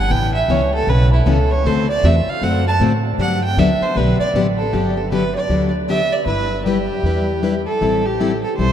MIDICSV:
0, 0, Header, 1, 5, 480
1, 0, Start_track
1, 0, Key_signature, 1, "major"
1, 0, Tempo, 385109
1, 140, Time_signature, 4, 2, 24, 8
1, 10875, End_track
2, 0, Start_track
2, 0, Title_t, "Fiddle"
2, 0, Program_c, 0, 110
2, 0, Note_on_c, 0, 78, 99
2, 137, Note_on_c, 0, 79, 109
2, 156, Note_off_c, 0, 78, 0
2, 419, Note_off_c, 0, 79, 0
2, 426, Note_on_c, 0, 76, 93
2, 626, Note_on_c, 0, 73, 98
2, 645, Note_off_c, 0, 76, 0
2, 918, Note_off_c, 0, 73, 0
2, 929, Note_on_c, 0, 69, 97
2, 1110, Note_on_c, 0, 71, 107
2, 1129, Note_off_c, 0, 69, 0
2, 1400, Note_off_c, 0, 71, 0
2, 1406, Note_on_c, 0, 64, 76
2, 1584, Note_on_c, 0, 69, 87
2, 1603, Note_off_c, 0, 64, 0
2, 1877, Note_on_c, 0, 73, 99
2, 1896, Note_off_c, 0, 69, 0
2, 2074, Note_on_c, 0, 72, 92
2, 2092, Note_off_c, 0, 73, 0
2, 2357, Note_off_c, 0, 72, 0
2, 2365, Note_on_c, 0, 74, 108
2, 2556, Note_on_c, 0, 76, 90
2, 2575, Note_off_c, 0, 74, 0
2, 2857, Note_on_c, 0, 77, 94
2, 2876, Note_off_c, 0, 76, 0
2, 3032, Note_on_c, 0, 78, 98
2, 3051, Note_off_c, 0, 77, 0
2, 3320, Note_off_c, 0, 78, 0
2, 3335, Note_on_c, 0, 81, 114
2, 3438, Note_off_c, 0, 81, 0
2, 3990, Note_on_c, 0, 78, 99
2, 4257, Note_off_c, 0, 78, 0
2, 4288, Note_on_c, 0, 79, 108
2, 4473, Note_on_c, 0, 76, 99
2, 4491, Note_off_c, 0, 79, 0
2, 4764, Note_on_c, 0, 72, 94
2, 4783, Note_off_c, 0, 76, 0
2, 4942, Note_on_c, 0, 71, 89
2, 4961, Note_off_c, 0, 72, 0
2, 5223, Note_off_c, 0, 71, 0
2, 5230, Note_on_c, 0, 74, 109
2, 5340, Note_off_c, 0, 74, 0
2, 5703, Note_on_c, 0, 69, 86
2, 5897, Note_on_c, 0, 67, 88
2, 5915, Note_off_c, 0, 69, 0
2, 6197, Note_on_c, 0, 69, 78
2, 6215, Note_off_c, 0, 67, 0
2, 6374, Note_off_c, 0, 69, 0
2, 6381, Note_on_c, 0, 71, 94
2, 6653, Note_off_c, 0, 71, 0
2, 6673, Note_on_c, 0, 74, 87
2, 7118, Note_off_c, 0, 74, 0
2, 7339, Note_on_c, 0, 76, 106
2, 7631, Note_on_c, 0, 74, 91
2, 7650, Note_off_c, 0, 76, 0
2, 7796, Note_off_c, 0, 74, 0
2, 7804, Note_on_c, 0, 71, 90
2, 8256, Note_off_c, 0, 71, 0
2, 8291, Note_on_c, 0, 67, 92
2, 9501, Note_off_c, 0, 67, 0
2, 9546, Note_on_c, 0, 69, 94
2, 10040, Note_on_c, 0, 67, 92
2, 10059, Note_off_c, 0, 69, 0
2, 10508, Note_off_c, 0, 67, 0
2, 10516, Note_on_c, 0, 69, 75
2, 10677, Note_off_c, 0, 69, 0
2, 10684, Note_on_c, 0, 72, 93
2, 10875, Note_off_c, 0, 72, 0
2, 10875, End_track
3, 0, Start_track
3, 0, Title_t, "Steel-string acoustic guitar"
3, 0, Program_c, 1, 25
3, 132, Note_on_c, 1, 49, 58
3, 134, Note_on_c, 1, 52, 64
3, 136, Note_on_c, 1, 59, 69
3, 148, Note_on_c, 1, 61, 73
3, 397, Note_off_c, 1, 49, 0
3, 398, Note_off_c, 1, 52, 0
3, 399, Note_off_c, 1, 59, 0
3, 405, Note_off_c, 1, 61, 0
3, 614, Note_on_c, 1, 49, 100
3, 621, Note_on_c, 1, 59, 95
3, 623, Note_on_c, 1, 52, 95
3, 629, Note_on_c, 1, 61, 106
3, 755, Note_off_c, 1, 49, 0
3, 759, Note_off_c, 1, 52, 0
3, 759, Note_off_c, 1, 59, 0
3, 763, Note_off_c, 1, 61, 0
3, 1104, Note_on_c, 1, 49, 58
3, 1108, Note_on_c, 1, 52, 58
3, 1109, Note_on_c, 1, 59, 66
3, 1116, Note_on_c, 1, 61, 70
3, 1362, Note_off_c, 1, 49, 0
3, 1365, Note_off_c, 1, 52, 0
3, 1365, Note_off_c, 1, 59, 0
3, 1369, Note_off_c, 1, 61, 0
3, 1572, Note_on_c, 1, 49, 92
3, 1579, Note_on_c, 1, 59, 97
3, 1580, Note_on_c, 1, 52, 92
3, 1590, Note_on_c, 1, 61, 103
3, 1713, Note_off_c, 1, 49, 0
3, 1717, Note_off_c, 1, 52, 0
3, 1717, Note_off_c, 1, 59, 0
3, 1723, Note_off_c, 1, 61, 0
3, 2065, Note_on_c, 1, 50, 67
3, 2065, Note_on_c, 1, 57, 69
3, 2069, Note_on_c, 1, 60, 74
3, 2072, Note_on_c, 1, 66, 75
3, 2074, Note_on_c, 1, 69, 87
3, 2322, Note_off_c, 1, 50, 0
3, 2322, Note_off_c, 1, 57, 0
3, 2324, Note_off_c, 1, 60, 0
3, 2326, Note_off_c, 1, 66, 0
3, 2327, Note_off_c, 1, 69, 0
3, 2536, Note_on_c, 1, 50, 97
3, 2542, Note_on_c, 1, 57, 101
3, 2543, Note_on_c, 1, 60, 101
3, 2550, Note_on_c, 1, 66, 97
3, 2551, Note_on_c, 1, 69, 98
3, 2674, Note_off_c, 1, 50, 0
3, 2678, Note_off_c, 1, 57, 0
3, 2678, Note_off_c, 1, 60, 0
3, 2682, Note_off_c, 1, 66, 0
3, 2682, Note_off_c, 1, 69, 0
3, 3022, Note_on_c, 1, 50, 67
3, 3025, Note_on_c, 1, 57, 71
3, 3031, Note_on_c, 1, 60, 67
3, 3036, Note_on_c, 1, 66, 70
3, 3036, Note_on_c, 1, 69, 70
3, 3280, Note_off_c, 1, 50, 0
3, 3281, Note_off_c, 1, 57, 0
3, 3285, Note_off_c, 1, 60, 0
3, 3287, Note_off_c, 1, 66, 0
3, 3287, Note_off_c, 1, 69, 0
3, 3497, Note_on_c, 1, 50, 90
3, 3500, Note_on_c, 1, 57, 87
3, 3503, Note_on_c, 1, 60, 91
3, 3508, Note_on_c, 1, 66, 106
3, 3510, Note_on_c, 1, 69, 100
3, 3634, Note_off_c, 1, 50, 0
3, 3636, Note_off_c, 1, 57, 0
3, 3637, Note_off_c, 1, 60, 0
3, 3640, Note_off_c, 1, 66, 0
3, 3641, Note_off_c, 1, 69, 0
3, 3978, Note_on_c, 1, 50, 71
3, 3980, Note_on_c, 1, 54, 72
3, 3980, Note_on_c, 1, 59, 72
3, 3983, Note_on_c, 1, 62, 83
3, 3986, Note_on_c, 1, 67, 75
3, 4237, Note_off_c, 1, 50, 0
3, 4238, Note_off_c, 1, 54, 0
3, 4238, Note_off_c, 1, 59, 0
3, 4240, Note_off_c, 1, 62, 0
3, 4241, Note_off_c, 1, 67, 0
3, 4466, Note_on_c, 1, 54, 97
3, 4468, Note_on_c, 1, 50, 82
3, 4470, Note_on_c, 1, 59, 109
3, 4471, Note_on_c, 1, 62, 104
3, 4479, Note_on_c, 1, 67, 88
3, 4598, Note_off_c, 1, 54, 0
3, 4599, Note_off_c, 1, 50, 0
3, 4600, Note_off_c, 1, 59, 0
3, 4601, Note_off_c, 1, 62, 0
3, 4605, Note_off_c, 1, 67, 0
3, 4947, Note_on_c, 1, 50, 70
3, 4947, Note_on_c, 1, 54, 67
3, 4953, Note_on_c, 1, 59, 76
3, 4954, Note_on_c, 1, 62, 67
3, 4958, Note_on_c, 1, 67, 81
3, 5201, Note_off_c, 1, 50, 0
3, 5201, Note_off_c, 1, 54, 0
3, 5204, Note_off_c, 1, 59, 0
3, 5205, Note_off_c, 1, 62, 0
3, 5207, Note_off_c, 1, 67, 0
3, 5423, Note_on_c, 1, 50, 94
3, 5425, Note_on_c, 1, 54, 88
3, 5428, Note_on_c, 1, 62, 101
3, 5431, Note_on_c, 1, 59, 103
3, 5436, Note_on_c, 1, 67, 92
3, 5556, Note_off_c, 1, 50, 0
3, 5557, Note_off_c, 1, 54, 0
3, 5559, Note_off_c, 1, 62, 0
3, 5560, Note_off_c, 1, 59, 0
3, 5563, Note_off_c, 1, 67, 0
3, 5893, Note_on_c, 1, 50, 54
3, 5899, Note_on_c, 1, 54, 59
3, 5899, Note_on_c, 1, 59, 60
3, 5903, Note_on_c, 1, 62, 67
3, 5907, Note_on_c, 1, 67, 71
3, 6154, Note_off_c, 1, 50, 0
3, 6157, Note_off_c, 1, 54, 0
3, 6157, Note_off_c, 1, 59, 0
3, 6159, Note_off_c, 1, 62, 0
3, 6161, Note_off_c, 1, 67, 0
3, 6374, Note_on_c, 1, 50, 70
3, 6382, Note_on_c, 1, 54, 85
3, 6384, Note_on_c, 1, 59, 86
3, 6387, Note_on_c, 1, 62, 85
3, 6387, Note_on_c, 1, 67, 94
3, 6512, Note_off_c, 1, 50, 0
3, 6516, Note_off_c, 1, 54, 0
3, 6517, Note_off_c, 1, 59, 0
3, 6518, Note_off_c, 1, 62, 0
3, 6518, Note_off_c, 1, 67, 0
3, 6851, Note_on_c, 1, 50, 56
3, 6852, Note_on_c, 1, 54, 58
3, 6853, Note_on_c, 1, 59, 65
3, 6858, Note_on_c, 1, 62, 69
3, 6860, Note_on_c, 1, 67, 58
3, 7114, Note_off_c, 1, 50, 0
3, 7114, Note_off_c, 1, 54, 0
3, 7115, Note_off_c, 1, 59, 0
3, 7117, Note_off_c, 1, 62, 0
3, 7118, Note_off_c, 1, 67, 0
3, 7339, Note_on_c, 1, 50, 82
3, 7343, Note_on_c, 1, 59, 85
3, 7344, Note_on_c, 1, 54, 91
3, 7346, Note_on_c, 1, 62, 91
3, 7354, Note_on_c, 1, 67, 95
3, 7475, Note_off_c, 1, 50, 0
3, 7477, Note_off_c, 1, 54, 0
3, 7477, Note_off_c, 1, 59, 0
3, 7478, Note_off_c, 1, 62, 0
3, 7482, Note_off_c, 1, 67, 0
3, 7812, Note_on_c, 1, 55, 55
3, 7818, Note_on_c, 1, 62, 61
3, 7822, Note_on_c, 1, 64, 68
3, 7827, Note_on_c, 1, 71, 75
3, 8075, Note_off_c, 1, 55, 0
3, 8078, Note_off_c, 1, 62, 0
3, 8080, Note_off_c, 1, 64, 0
3, 8082, Note_off_c, 1, 71, 0
3, 8302, Note_on_c, 1, 55, 85
3, 8307, Note_on_c, 1, 62, 91
3, 8314, Note_on_c, 1, 64, 84
3, 8316, Note_on_c, 1, 71, 98
3, 8437, Note_off_c, 1, 55, 0
3, 8439, Note_off_c, 1, 62, 0
3, 8443, Note_off_c, 1, 64, 0
3, 8444, Note_off_c, 1, 71, 0
3, 8789, Note_on_c, 1, 55, 58
3, 8796, Note_on_c, 1, 62, 64
3, 8797, Note_on_c, 1, 64, 66
3, 8802, Note_on_c, 1, 71, 74
3, 9044, Note_off_c, 1, 55, 0
3, 9048, Note_off_c, 1, 62, 0
3, 9048, Note_off_c, 1, 64, 0
3, 9051, Note_off_c, 1, 71, 0
3, 9258, Note_on_c, 1, 55, 86
3, 9259, Note_on_c, 1, 62, 81
3, 9264, Note_on_c, 1, 64, 87
3, 9273, Note_on_c, 1, 71, 95
3, 9396, Note_off_c, 1, 55, 0
3, 9396, Note_off_c, 1, 62, 0
3, 9399, Note_off_c, 1, 64, 0
3, 9403, Note_off_c, 1, 71, 0
3, 9740, Note_on_c, 1, 52, 60
3, 9741, Note_on_c, 1, 55, 67
3, 9745, Note_on_c, 1, 64, 58
3, 9746, Note_on_c, 1, 60, 65
3, 9749, Note_on_c, 1, 69, 66
3, 10000, Note_off_c, 1, 52, 0
3, 10001, Note_off_c, 1, 55, 0
3, 10003, Note_off_c, 1, 60, 0
3, 10003, Note_off_c, 1, 64, 0
3, 10005, Note_off_c, 1, 69, 0
3, 10221, Note_on_c, 1, 52, 79
3, 10225, Note_on_c, 1, 55, 76
3, 10227, Note_on_c, 1, 60, 80
3, 10234, Note_on_c, 1, 64, 94
3, 10236, Note_on_c, 1, 69, 104
3, 10358, Note_off_c, 1, 52, 0
3, 10360, Note_off_c, 1, 55, 0
3, 10361, Note_off_c, 1, 60, 0
3, 10364, Note_off_c, 1, 64, 0
3, 10366, Note_off_c, 1, 69, 0
3, 10704, Note_on_c, 1, 55, 61
3, 10708, Note_on_c, 1, 52, 61
3, 10711, Note_on_c, 1, 60, 67
3, 10713, Note_on_c, 1, 64, 63
3, 10716, Note_on_c, 1, 69, 71
3, 10875, Note_off_c, 1, 52, 0
3, 10875, Note_off_c, 1, 55, 0
3, 10875, Note_off_c, 1, 60, 0
3, 10875, Note_off_c, 1, 64, 0
3, 10875, Note_off_c, 1, 69, 0
3, 10875, End_track
4, 0, Start_track
4, 0, Title_t, "Upright bass"
4, 0, Program_c, 2, 32
4, 125, Note_on_c, 2, 33, 83
4, 597, Note_off_c, 2, 33, 0
4, 603, Note_on_c, 2, 37, 86
4, 1076, Note_off_c, 2, 37, 0
4, 1084, Note_on_c, 2, 35, 92
4, 1556, Note_off_c, 2, 35, 0
4, 1572, Note_on_c, 2, 37, 92
4, 2040, Note_off_c, 2, 37, 0
4, 2054, Note_on_c, 2, 38, 76
4, 2520, Note_off_c, 2, 38, 0
4, 2532, Note_on_c, 2, 40, 93
4, 2809, Note_off_c, 2, 40, 0
4, 3010, Note_on_c, 2, 42, 86
4, 3478, Note_off_c, 2, 42, 0
4, 3488, Note_on_c, 2, 45, 92
4, 3956, Note_off_c, 2, 45, 0
4, 3965, Note_on_c, 2, 43, 75
4, 4434, Note_off_c, 2, 43, 0
4, 4447, Note_on_c, 2, 38, 97
4, 4725, Note_off_c, 2, 38, 0
4, 4930, Note_on_c, 2, 35, 86
4, 5206, Note_off_c, 2, 35, 0
4, 5406, Note_on_c, 2, 33, 85
4, 5874, Note_off_c, 2, 33, 0
4, 5892, Note_on_c, 2, 31, 81
4, 6661, Note_off_c, 2, 31, 0
4, 6841, Note_on_c, 2, 38, 66
4, 7615, Note_off_c, 2, 38, 0
4, 7799, Note_on_c, 2, 31, 84
4, 8574, Note_off_c, 2, 31, 0
4, 8760, Note_on_c, 2, 40, 75
4, 9535, Note_off_c, 2, 40, 0
4, 9732, Note_on_c, 2, 33, 76
4, 10503, Note_off_c, 2, 33, 0
4, 10693, Note_on_c, 2, 35, 80
4, 10875, Note_off_c, 2, 35, 0
4, 10875, End_track
5, 0, Start_track
5, 0, Title_t, "Muted upright bass strokes"
5, 2825, Note_on_c, 9, 29, 43
5, 2949, Note_off_c, 9, 29, 0
5, 4746, Note_on_c, 9, 29, 43
5, 4871, Note_off_c, 9, 29, 0
5, 5226, Note_on_c, 9, 29, 43
5, 5351, Note_off_c, 9, 29, 0
5, 10875, End_track
0, 0, End_of_file